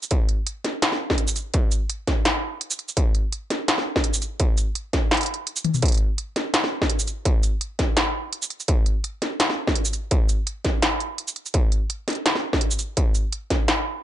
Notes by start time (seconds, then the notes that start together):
0.03 shaker
0.11 kick, closed hi-hat
0.29 closed hi-hat
0.47 closed hi-hat
0.65 snare, closed hi-hat
0.82 snare, closed hi-hat
0.92 snare
1.10 kick, snare
1.18 closed hi-hat
1.28 shaker
1.36 closed hi-hat, shaker
1.54 kick, closed hi-hat
1.72 closed hi-hat, shaker
1.90 closed hi-hat
2.07 kick, snare, closed hi-hat
2.25 snare, closed hi-hat
2.61 closed hi-hat
2.71 shaker
2.79 closed hi-hat
2.89 shaker
2.97 kick, closed hi-hat
3.15 closed hi-hat
3.33 closed hi-hat
3.50 snare, closed hi-hat
3.68 snare, closed hi-hat
3.78 snare
3.96 kick, snare
4.04 closed hi-hat
4.14 shaker
4.22 closed hi-hat, shaker
4.40 kick, closed hi-hat
4.58 closed hi-hat, shaker
4.75 closed hi-hat
4.93 kick, snare, closed hi-hat
5.11 snare, closed hi-hat
5.14 closed hi-hat
5.17 closed hi-hat
5.21 closed hi-hat
5.23 closed hi-hat
5.26 closed hi-hat
5.34 closed hi-hat
5.47 closed hi-hat
5.56 shaker
5.65 closed hi-hat, high tom
5.74 mid tom, shaker
5.82 kick, closed hi-hat
5.86 closed hi-hat
5.88 closed hi-hat
5.94 closed hi-hat
5.98 closed hi-hat
6.18 closed hi-hat
6.36 snare, closed hi-hat
6.54 snare, closed hi-hat
6.64 snare
6.82 kick, snare
6.90 closed hi-hat
6.99 shaker
7.08 closed hi-hat, shaker
7.25 kick, closed hi-hat
7.43 closed hi-hat, shaker
7.61 closed hi-hat
7.79 kick, snare, closed hi-hat
7.97 snare, closed hi-hat
8.33 closed hi-hat
8.42 shaker
8.50 closed hi-hat
8.60 shaker
8.68 kick, closed hi-hat
8.86 closed hi-hat
9.04 closed hi-hat
9.22 snare, closed hi-hat
9.40 snare, closed hi-hat
9.50 snare
9.67 kick, snare
9.76 closed hi-hat
9.85 shaker
9.93 closed hi-hat, shaker
10.11 kick, closed hi-hat
10.29 closed hi-hat, shaker
10.47 closed hi-hat
10.65 kick, snare, closed hi-hat
10.82 snare, closed hi-hat
11.00 closed hi-hat
11.18 closed hi-hat
11.28 shaker
11.36 closed hi-hat
11.46 shaker
11.54 kick, closed hi-hat
11.72 closed hi-hat
11.90 closed hi-hat
12.08 snare, closed hi-hat
12.10 closed hi-hat
12.13 closed hi-hat
12.15 closed hi-hat
12.26 snare, closed hi-hat
12.35 snare
12.53 kick, snare
12.61 closed hi-hat
12.71 shaker
12.79 closed hi-hat, shaker
12.97 kick, closed hi-hat
13.15 closed hi-hat, shaker
13.33 closed hi-hat
13.50 kick, snare, closed hi-hat
13.68 snare, closed hi-hat